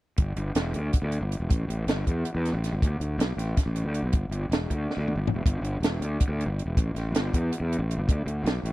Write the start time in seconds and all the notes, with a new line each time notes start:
0.18 G1, kick, closed hi-hat
0.36 G1, closed hi-hat
0.55 E1, snare, closed hi-hat
0.74 D2, closed hi-hat
0.93 kick, closed hi-hat
1.02 D2
1.12 closed hi-hat
1.21 G1
1.32 closed hi-hat
1.40 E1
1.50 A1, kick, closed hi-hat
1.68 A1, closed hi-hat
1.87 G1, snare, closed hi-hat
2.07 E2, kick, closed hi-hat
2.25 closed hi-hat
2.35 E2
2.45 snare, closed hi-hat
2.53 A1
2.64 snare, closed hi-hat
2.73 G1
2.82 D2, kick, closed hi-hat
3.00 D2, closed hi-hat
3.18 B1, snare, closed hi-hat
3.37 A1, snare, closed hi-hat
3.57 kick, snare, closed hi-hat
3.66 A1
3.76 closed hi-hat
3.84 D2
3.94 closed hi-hat
4.03 B1
4.13 G1, kick, closed hi-hat
4.29 G1, closed hi-hat
4.49 E1, snare, closed hi-hat
4.70 D2, kick, closed hi-hat
4.91 snare
4.97 D2
5.08 mid tom
5.16 G1
5.27 floor tom
5.34 E1
5.46 G1, kick, closed hi-hat
5.61 G1, closed hi-hat
5.80 E1, snare, closed hi-hat
6.00 D2, closed hi-hat
6.20 kick, closed hi-hat
6.28 D2
6.41 closed hi-hat
6.46 G1
6.59 closed hi-hat
6.66 E1
6.77 A1, kick, closed hi-hat
6.94 A1, snare, closed hi-hat
7.12 G1, snare, closed hi-hat
7.33 E2, kick, closed hi-hat
7.53 closed hi-hat
7.60 E2
7.73 closed hi-hat
7.79 A1
7.91 closed hi-hat
7.98 G1
8.09 D2, kick, closed hi-hat
8.26 D2, closed hi-hat
8.44 B1, snare, closed hi-hat
8.63 A1, closed hi-hat